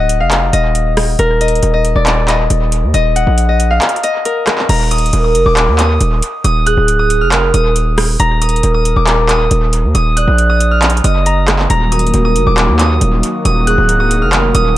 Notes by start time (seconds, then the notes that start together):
Already playing: D1 F#5
0.00 D#5
0.09 closed hi-hat
0.20 F1 F5
0.31 clap, closed hi-hat
0.53 D#1 D#5, closed hi-hat
0.75 closed hi-hat
0.97 cross-stick, open hi-hat
1.19 D#1 A#4, closed hi-hat
1.41 D#5, closed hi-hat
1.48 closed hi-hat
1.55 closed hi-hat
1.63 D#1, closed hi-hat
1.74 D#5
1.85 closed hi-hat
1.96 D#1 D5
2.06 clap, closed hi-hat
2.28 D#5, clap, closed hi-hat
2.50 D#1, closed hi-hat
2.72 closed hi-hat
2.83 D#2
2.94 D#1 D#5, closed hi-hat
3.16 F#5, closed hi-hat
3.27 A#1
3.38 closed hi-hat
3.49 D#5
3.60 closed hi-hat
3.71 F5
3.82 clap, closed hi-hat
3.89 closed hi-hat
3.96 closed hi-hat
4.04 D#5, closed hi-hat
4.25 A#4, closed hi-hat
4.47 cross-stick, clap, closed hi-hat
4.58 clap
4.69 D#1 A#5, closed hi-hat, crash
4.91 A#4 D#6, closed hi-hat
4.98 closed hi-hat
5.06 closed hi-hat
5.13 D#1, closed hi-hat
5.24 D#6
5.35 F1, closed hi-hat
5.46 D#1 D6
5.57 clap, closed hi-hat
5.68 D#2
5.79 D#6, clap, closed hi-hat
6.01 D#1, closed hi-hat
6.22 closed hi-hat
6.44 D#1 D#6, closed hi-hat
6.66 G#4 F#6, closed hi-hat
6.77 D1
6.88 closed hi-hat
6.99 D#6
7.10 closed hi-hat
7.21 F1 F6
7.32 A#4, clap, closed hi-hat
7.54 D#1 D#6, closed hi-hat
7.76 closed hi-hat
7.98 cross-stick, open hi-hat
8.20 D#1 A#5, closed hi-hat
8.42 A#4 D#6, closed hi-hat
8.49 closed hi-hat
8.56 closed hi-hat
8.63 D#1, closed hi-hat
8.74 D#6
8.85 closed hi-hat
8.96 D#1 D6
9.07 clap, closed hi-hat
9.29 D#6, clap, closed hi-hat
9.51 D#1, closed hi-hat
9.73 closed hi-hat
9.84 D#2
9.95 D#1 D#6, closed hi-hat
10.16 D5 F#6, closed hi-hat
10.28 A#1
10.38 closed hi-hat
10.49 D#6
10.60 closed hi-hat
10.71 F6
10.82 clap, closed hi-hat
10.90 closed hi-hat
10.97 closed hi-hat
11.04 F#1 D#5 D#6, closed hi-hat
11.26 A#5, closed hi-hat
11.48 cross-stick, clap, closed hi-hat
11.59 clap
11.70 D#1 D#3 F#3 A#3 F#4 A#5, closed hi-hat
11.92 A#4 D#6, closed hi-hat
11.99 closed hi-hat
12.07 closed hi-hat
12.14 D#1, closed hi-hat
12.25 D#6
12.36 F1, closed hi-hat
12.47 D#1 D6
12.58 clap, closed hi-hat
12.69 D#2
12.79 D#6, clap, closed hi-hat
13.01 D#1, closed hi-hat
13.23 closed hi-hat
13.45 D#1 D#6, closed hi-hat
13.67 G#4 F#6, closed hi-hat
13.78 D1
13.89 closed hi-hat
14.00 D#6
14.11 closed hi-hat
14.22 F1 F6
14.33 A#4, clap, closed hi-hat
14.55 D#1 D#6, closed hi-hat